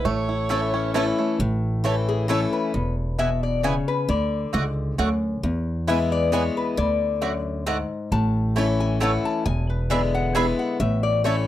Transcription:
Already playing: five-string banjo E4
0.05 upright bass A1, steel-string acoustic guitar A2, five-string banjo A3, fiddle C#5
0.29 five-string banjo E4
0.49 steel-string acoustic guitar E3 A3 C#4 E4, mandolin A3 E4 C#5 A5, five-string banjo A4
0.74 five-string banjo C#4
0.94 steel-string acoustic guitar E3 A3 C#4 E4, mandolin A3 E4 C#5 A5, five-string banjo E4
1.19 five-string banjo A3
1.39 upright bass A1, steel-string acoustic guitar A2
1.84 steel-string acoustic guitar E3 A3 C#4 E4, mandolin A3 E4 C#5 A5
2.09 resonator guitar played with a steel bar G#4
2.28 steel-string acoustic guitar E3 A3 C#4 E4, mandolin A3 E4 C#5 A5, resonator guitar played with a steel bar A4
2.53 resonator guitar played with a steel bar B4
2.74 upright bass E1, steel-string acoustic guitar E2
3.19 steel-string acoustic guitar B2, mandolin B3 E4 B4 G#5, resonator guitar played with a steel bar E5
3.43 resonator guitar played with a steel bar D5
3.63 steel-string acoustic guitar C#3, mandolin B3 E4 B4 G#5, resonator guitar played with a steel bar C#5
3.88 resonator guitar played with a steel bar B4
4.09 upright bass D2, steel-string acoustic guitar D3, resonator guitar played with a steel bar D5
4.53 upright bass C#2, steel-string acoustic guitar G#2, mandolin A3 F#4 D5 F#5
4.98 upright bass D2, steel-string acoustic guitar F#2, mandolin A3 F#4 D5 F#5
5.43 upright bass E2, steel-string acoustic guitar E2
5.87 steel-string acoustic guitar E3 G#3 B3 E4, mandolin B3 E4 B4 G#5, resonator guitar played with a steel bar E5
6.12 resonator guitar played with a steel bar D5
6.32 steel-string acoustic guitar E3 G#3 B3 E4, mandolin B3 E4 B4 G#5, resonator guitar played with a steel bar C#5
6.57 resonator guitar played with a steel bar B4
6.77 upright bass D2, steel-string acoustic guitar D3, resonator guitar played with a steel bar D5
7.22 steel-string acoustic guitar F#2, mandolin A3 F#4 D5 F#5
7.66 steel-string acoustic guitar G#2, mandolin A3 F#4 D5 F#5
8.12 upright bass A1, steel-string acoustic guitar A2, resonator guitar played with a steel bar A5
8.56 steel-string acoustic guitar E3 A3 C#4 E4, mandolin A3 E4 C#5 A5
8.80 resonator guitar played with a steel bar G#5
9.00 steel-string acoustic guitar E3 A3 C#4 E4, mandolin A3 E4 C#5 A5, resonator guitar played with a steel bar F#5
9.25 resonator guitar played with a steel bar A5
9.46 upright bass E1, steel-string acoustic guitar E2, resonator guitar played with a steel bar G#5
9.70 resonator guitar played with a steel bar B4
9.90 steel-string acoustic guitar D3 G#3 B3 E4, mandolin D4 G#4 E5 B5, resonator guitar played with a steel bar D5
10.15 resonator guitar played with a steel bar F#5
10.35 steel-string acoustic guitar D3 G#3 B3 E4, mandolin D4 G#4 E5 B5, resonator guitar played with a steel bar G#5
10.59 resonator guitar played with a steel bar F#5
10.80 upright bass A1, steel-string acoustic guitar A2, resonator guitar played with a steel bar E5
11.03 resonator guitar played with a steel bar D5
11.24 steel-string acoustic guitar E3 A3 C#4 E4, mandolin A3 E4 C#5 A5, resonator guitar played with a steel bar C#5

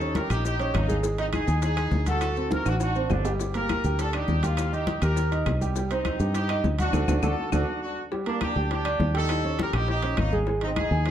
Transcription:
Already playing: fingered electric bass D#2, horn section D#4 A4
0.01 upright piano C#4 C#5, high conga, maracas
0.15 horn section G4 A#4, high bongo, high conga, high timbale, maracas
0.30 fingered electric bass A#1, horn section D#4 G4, upright piano G4 G5, high bongo, high conga, high timbale, claves, maracas
0.45 horn section D#4 G4, high bongo, high conga, maracas
0.59 upright piano C#4 C#5, high bongo, high conga, high timbale, maracas
0.74 fingered electric bass G#1, horn section A#3 D#4, high bongo, low bongo, high conga, high timbale, claves, maracas
0.88 upright piano G#3 G#4, high bongo, high conga, maracas
1.03 upright piano G#3 G#4, high bongo, high conga, maracas
1.18 horn section C4 D#4, upright piano D#4 D#5, high bongo, high conga, high timbale, maracas
1.33 horn section D#4 G#4, high bongo, high conga, high timbale, claves, maracas
1.47 fingered electric bass D#2, upright piano G#4 G#5, high bongo, high conga, maracas
1.62 horn section D#4 G#4, high bongo, high conga, high timbale, maracas
1.77 upright piano G#4 G#5, high bongo, high conga, high timbale, claves, maracas
1.91 fingered electric bass D2, high bongo, low bongo, high conga, maracas
2.06 upright piano F#4 F#5, horn section F#4 A4, high conga, high timbale, maracas
2.21 high bongo, high conga, high timbale, claves, maracas
2.36 upright piano C4 C5, high conga, maracas
2.51 horn section F#4 A#4, high bongo, high conga, high timbale, maracas
2.65 fingered electric bass A1, horn section D4 F#4, upright piano F#4 F#5, high bongo, high conga, high timbale, claves, maracas
2.80 horn section D4 F#4, high bongo, high conga, high timbale, maracas
2.95 upright piano C4 C5, high bongo, high conga, maracas
3.10 fingered electric bass G1, horn section A3 D4, high bongo, low bongo, high conga, low timbale, claves, maracas
3.25 upright piano G3 G4, high bongo, low timbale, maracas
3.40 upright piano G3 G4, high bongo, high conga, maracas
3.54 upright piano A#3 A#4, horn section G4 A#4, high bongo, high conga, high timbale, maracas
3.69 high bongo, high conga, high timbale, claves, maracas
3.84 fingered electric bass D2, upright piano G4 G5, high bongo, high conga, maracas
3.99 horn section D4 A4, high bongo, high conga, high timbale, maracas
4.13 upright piano D4 D5, horn section D#4 G4, high bongo, high conga, high timbale, claves, maracas
4.28 fingered electric bass D#2, high bongo, low bongo, high conga, maracas
4.43 horn section A#3 F4, upright piano G4 G5, high conga, high timbale, maracas
4.57 high bongo, high conga, high timbale, claves, maracas
4.72 upright piano D#4 D#5, horn section D#4 G4, high conga, maracas
4.87 high bongo, high conga, high timbale, maracas
5.02 fingered electric bass D#2, upright piano G4 G5, horn section G4 A#4, high bongo, high conga, high timbale, claves, maracas
5.16 high bongo, high conga, maracas
5.31 upright piano D#4 D#5, high bongo, high conga, high timbale, maracas
5.46 fingered electric bass C2, high bongo, low bongo, high conga, high timbale, claves, maracas
5.61 upright piano G3 G4, high bongo, high conga, maracas
5.76 upright piano G3 G4, high bongo, high conga, maracas
5.90 upright piano C4 C5, horn section C4 D#4, high bongo, high conga, high timbale, maracas
6.05 high bongo, high conga, high timbale, claves, maracas
6.20 fingered electric bass G2, upright piano G4 G5, maracas
6.34 horn section D#4 G4, high bongo, high conga, high timbale, maracas
6.49 upright piano D#4 D#5, high bongo, high conga, high timbale, claves, maracas
6.64 fingered electric bass D2, high bongo, low bongo, high conga, maracas
6.79 horn section D4 F#4, upright piano F#4 F#5, high conga, high timbale, maracas
6.93 fingered electric bass D2, upright piano D4 F#4 A4, low bongo, high conga, high timbale, claves, maracas
7.08 fingered electric bass D2, upright piano D4 F#4 A4, low bongo, high conga, high timbale, claves, maracas
7.23 fingered electric bass D2, upright piano D4 F#4 A4, horn section F#4 A4, low bongo, high conga, high timbale, claves, maracas
7.52 fingered electric bass D2, upright piano D4 F#4 A4, horn section D4 F#4, low bongo, high conga, high timbale, claves, maracas
7.82 horn section D4 F#4
8.12 upright piano G3 G4, high bongo, high conga
8.26 upright piano A#3 A#4, horn section A#3 D4, high bongo, high conga, high timbale
8.41 horn section D4 G4, high bongo, high conga, high timbale, claves
8.56 fingered electric bass D2, upright piano G4 G5, high bongo, high conga
8.71 horn section D4 G4, high bongo, high conga, high timbale
8.85 upright piano D4 D5, high bongo, high conga, high timbale, claves
9.00 fingered electric bass D#2, high bongo, low bongo, high conga
9.14 horn section D#4 A4, upright piano G4 G5, high timbale
9.29 high bongo, high conga, high timbale, claves
9.44 upright piano C#4 C#5, high conga
9.59 horn section G4 A#4, high bongo, high conga, high timbale
9.73 fingered electric bass A#1, horn section D#4 G4, upright piano G4 G5, high bongo, high conga, high timbale, claves
9.88 horn section D#4 G4, high bongo, high conga
10.02 upright piano C#4 C#5, high bongo, high conga, high timbale
10.17 fingered electric bass G#1, horn section A#3 D#4, high bongo, low bongo, high conga, high timbale, claves
10.32 upright piano G#3 G#4, high bongo, high conga
10.47 upright piano G#3 G#4, high bongo, high conga
10.61 horn section C4 D#4, upright piano D#4 D#5, high bongo, high conga, high timbale
10.76 horn section D#4 G#4, high bongo, high conga, high timbale, claves
10.91 fingered electric bass D#2, upright piano G#4 G#5, high bongo, high conga
11.06 horn section D#4 G#4, high bongo, high conga, high timbale

